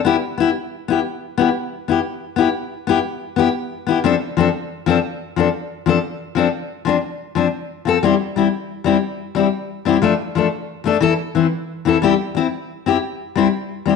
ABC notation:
X:1
M:12/8
L:1/8
Q:3/8=120
K:C
V:1 name="Steel-string acoustic guitar"
[B,EG] z [B,EG] z2 [B,EG] z2 [B,EG] z2 [B,EG] | z2 [B,EG] z2 [B,EG] z2 [B,EG] z2 [B,EG] | [F,CDA] z [F,CDA] z2 [F,CDA] z2 [F,CDA] z2 [F,CDA] | z2 [F,CDA] z2 [F,CD] z2 [F,CD] z2 [F,CA] |
[G,CEG] z [G,CEG] z2 [G,CEG] z2 [G,CEG] z2 [G,CEG] | [F,A,DA] z [F,A,DA] z2 [A,DA] [E,EA] z [E,CE] z2 [E,CEA] | [G,CEG] z [CE] z2 [CEG] z2 [G,CEG] z2 [G,CEG] |]